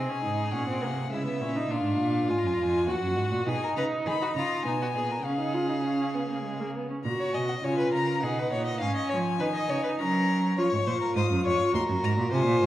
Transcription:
Already playing: viola C4, violin G#4 G#5
0.09 viola C#4
0.23 cello G#2, viola D#4
0.53 cello A#2, viola C#4, violin F#5
0.68 viola C4
0.83 cello C3, viola A#3
1.12 cello C#3, viola G#3, violin E4 E5
1.26 viola B3
1.41 cello A#2, viola C#4
1.56 viola D#4
1.69 cello A#2, viola D4, violin F4 F5
1.84 cello G#2
1.99 cello A#2
2.29 cello G#2, viola F4, violin G#5
2.38 violin A#5
2.44 cello F#2, violin G#5
2.54 violin A#5
2.58 cello F2
2.63 violin G#5
2.87 cello D#2, viola F#4, violin F#4 F#5
3.02 cello F#2
3.17 cello G#2
3.31 cello A#2
3.46 cello B2, viola D#4, violin G#4 G#5
3.63 violin A#4
3.76 cello C#3, violin B4 A#5
4.06 cello D#3, violin G#4 B5
4.21 violin F#4
4.35 cello C#3, violin F4 A#5
4.64 cello B2, viola B3, violin D#4 G#5
4.81 violin F#4
4.94 cello A#2, violin G#4
5.11 violin A#4
5.24 cello C#3, viola C#4, violin G#4 F5
5.39 viola D#4
5.54 viola F4
5.69 viola D#4
5.84 viola C#4
6.14 viola B3
6.29 viola A#3
6.45 viola G#3
6.60 viola A#3
6.75 viola B3
6.90 viola C#4
7.04 cello A#2, viola F#4, violin A#5
7.20 violin C#5
7.33 cello B2, violin D#5 G#5
7.48 violin F#5
7.64 cello C#3, viola F4, violin C#5 G#5
7.78 violin B4
7.92 cello C#3, violin A#4 A#5
8.22 cello B2, viola D#4, violin G#4 F#5
8.39 violin B4
8.52 cello A#2, violin C#5
8.66 violin D#5
8.80 cello G#2, viola C#4, violin F5 G#5
8.96 violin D#5
9.10 cello F3, violin C#5
9.40 cello D#3, viola D#4, violin B4
9.54 violin D#5
9.69 cello C#3, violin C#5
9.83 violin B4
9.99 cello F#3, viola C#4, violin A#4 A#5
10.57 cello F3, viola F4, violin C#5 C#6
10.73 cello G#2
10.87 cello A#2, viola F4, violin C5
11.01 violin A#4
11.16 cello G#2, violin C5 D#6
11.31 cello F#2
11.45 cello F2, violin C#5 C#6
11.73 cello D#2, viola F#4, violin A#4 C6
11.89 cello F#2
12.03 cello G#2, violin A#5
12.18 cello A#2
12.31 cello C3, viola F4, violin C5 G#5
12.46 cello A#2
12.62 cello G#2

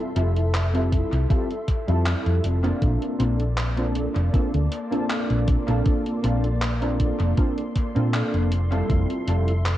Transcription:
Already playing: synth keys G3 C4 E4 F4 A4, string machine A4 E5 C6
0.15 fingered electric bass F1, synth keys G3 C4 E4 F4 A4, closed hi-hat
0.36 closed hi-hat
0.54 clap, closed hi-hat
0.73 synth keys G3 C4 E4 F4 A4, closed hi-hat
0.92 kick, closed hi-hat
1.13 fingered electric bass C2, closed hi-hat
1.29 synth keys G3 C4 E4 F4 A4, kick, closed hi-hat
1.51 closed hi-hat
1.68 kick, closed hi-hat
1.87 fingered electric bass F2, synth keys G3 C4 E4 F4 A4, closed hi-hat
2.06 clap, closed hi-hat
2.26 fingered electric bass F2, closed hi-hat
2.44 fingered electric bass F1, closed hi-hat
2.63 synth keys A#3 C4 D4 F4 A4, closed hi-hat
2.82 fingered electric bass A#1, string machine A#3 D5 A5 C6, kick, closed hi-hat
3.02 closed hi-hat
3.19 fingered electric bass A#1, synth keys A#3 C4 D4 F4 A4, closed hi-hat
3.40 closed hi-hat
3.58 clap, closed hi-hat
3.77 synth keys A#3 C4 D4 F4 A4, closed hi-hat
3.96 closed hi-hat
4.16 fingered electric bass F1, closed hi-hat
4.33 synth keys A#3 C4 D4 F4 A4, kick, closed hi-hat
4.54 fingered electric bass D2, closed hi-hat
4.72 closed hi-hat
4.91 synth keys A#3 C4 D4 F4 A4, closed hi-hat
5.10 clap, closed hi-hat
5.30 fingered electric bass A#1, closed hi-hat
5.48 kick, closed hi-hat
5.67 fingered electric bass A#1, synth keys A#3 C4 D4 F4 A4, closed hi-hat
5.86 kick, closed hi-hat
6.06 closed hi-hat
6.22 fingered electric bass A#1, synth keys A#3 C4 D4 F4 A4, closed hi-hat
6.44 closed hi-hat
6.62 clap, closed hi-hat
6.81 synth keys A#3 C4 D4 F4 A4, closed hi-hat
7.00 kick, closed hi-hat
7.20 fingered electric bass F1, closed hi-hat
7.37 synth keys A#3 C4 D4 F4 A4, kick, closed hi-hat
7.58 closed hi-hat
7.75 kick, closed hi-hat
7.95 fingered electric bass A#2, synth keys A#3 C4 D4 F4 A4, closed hi-hat
8.14 clap, closed hi-hat
8.34 fingered electric bass F1, closed hi-hat
8.51 string machine A4 E5, closed hi-hat
8.71 synth keys G3 C4 E4 F4 A4, closed hi-hat
8.89 fingered electric bass F1, kick, closed hi-hat
9.10 closed hi-hat
9.26 fingered electric bass F1, synth keys G3 C4 E4 F4 A4, closed hi-hat
9.48 closed hi-hat
9.66 clap, closed hi-hat

